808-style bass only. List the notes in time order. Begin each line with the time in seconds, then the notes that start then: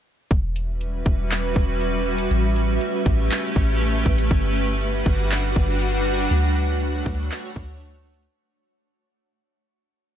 0.31 E1
1.06 E1
1.56 E1
2.31 A1
3.06 A1
3.56 A1
4.06 A1
4.31 G1
5.06 G1
5.56 G1
6.31 D2
7.06 D2
7.56 D2